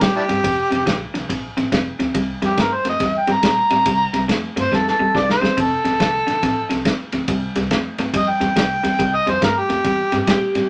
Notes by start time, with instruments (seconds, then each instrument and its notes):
0.01 upright bass A#2, clean electric guitar C3 G3, harmonica G4, kick, snare, ride
0.16 harmonica D4 E4 G4
0.29 upright bass G2, clean electric guitar C3 G3, snare, ride
0.44 upright bass F1, clean electric guitar F2 C3, kick, ride
0.71 upright bass F1, clean electric guitar F2 C3, snare, ride
0.86 upright bass A#1, clean electric guitar F2 D3, kick, snare, ride
1.14 upright bass C2, clean electric guitar F2 D3, snare, ride
1.29 upright bass A#1, clean electric guitar F2 C3, kick, snare, ride
1.57 upright bass A1, clean electric guitar F2 C3, snare, ride
1.72 upright bass F1, clean electric guitar F2 C3, kick, snare, ride
1.99 upright bass D2, clean electric guitar F2 C3, snare, ride
2.14 upright bass C2, clean electric guitar C3 G3, kick, ride
2.42 upright bass F2, clean electric guitar C3 G3, harmonica G4, snare, ride
2.57 upright bass G2, clean electric guitar C3 A3, harmonica A#4, kick, snare, ride
2.74 harmonica C5
2.85 upright bass F2, clean electric guitar C3 A3, snare, ride
2.89 harmonica D#5
3.00 upright bass E2, clean electric guitar C3 G3, kick, snare, ride
3.18 harmonica G5
3.27 upright bass G2, clean electric guitar C3 G3, snare, ride
3.32 harmonica A#5
3.43 upright bass A#2, clean electric guitar C3 G3, harmonica A#5, kick, snare, ride
3.70 upright bass A2, clean electric guitar C3 G3, snare, ride
3.86 upright bass C2, clean electric guitar C3 G3, kick, ride
4.13 upright bass C2, clean electric guitar C3 G3, snare, ride
4.28 upright bass F2, clean electric guitar C3 A3, kick, snare, ride
4.56 upright bass G2, clean electric guitar C3 A3, snare, ride
4.61 harmonica C5
4.72 upright bass F2, clean electric guitar C3 G3, harmonica A4, kick, snare
4.87 harmonica A4, snare
4.99 upright bass E2, clean electric guitar C3 G3
5.15 upright bass C2, clean electric guitar C3 G3, harmonica D5, kick, snare
5.30 harmonica C5, snare
5.42 upright bass E2, clean electric guitar C3 G3, snare
5.57 upright bass F1, clean electric guitar F2 C3, harmonica A4, kick, ride
5.85 upright bass A#1, clean electric guitar F2 C3, snare, ride
6.00 upright bass C2, clean electric guitar F2 D3, kick, snare, ride
6.27 upright bass A#1, clean electric guitar F2 D3, snare, ride
6.43 upright bass A1, clean electric guitar F2 C3, kick, snare, ride
6.69 upright bass C2, clean electric guitar F2 C3, snare, ride
6.85 upright bass D#2, clean electric guitar F2 C3, kick, snare, ride
7.12 upright bass D2, clean electric guitar F2 C3, snare, ride
7.28 upright bass C2, clean electric guitar C3 G3, kick, ride
7.55 upright bass C2, clean electric guitar C3 G3, snare, ride
7.71 upright bass F2, clean electric guitar C3 A3, kick, snare, ride
7.98 upright bass G2, clean electric guitar C3 A3, snare, ride
8.14 upright bass F2, clean electric guitar C3 G3, harmonica D#5, kick, ride
8.29 harmonica G5
8.40 upright bass E2, clean electric guitar C3 G3, snare, ride
8.56 upright bass C2, clean electric guitar C3 G3, kick, snare, ride
8.83 upright bass E2, clean electric guitar C3 G3, snare, ride
8.99 upright bass C2, clean electric guitar C3 G3, kick, ride
9.15 harmonica D#5
9.26 upright bass F2, clean electric guitar C3 G3, harmonica C5, snare, ride
9.42 upright bass G2, clean electric guitar C3 A3, harmonica A#4, kick, snare, ride
9.58 harmonica G4
9.69 upright bass F2, clean electric guitar C3 A3, snare, ride
9.84 upright bass E2, clean electric guitar C3 G3, kick, ride
10.12 upright bass G2, clean electric guitar C3 G3, snare, ride
10.27 clean electric guitar C3 G3, electric slide guitar G4, kick, snare, ride
10.55 upright bass A2, clean electric guitar C3 G3, snare, ride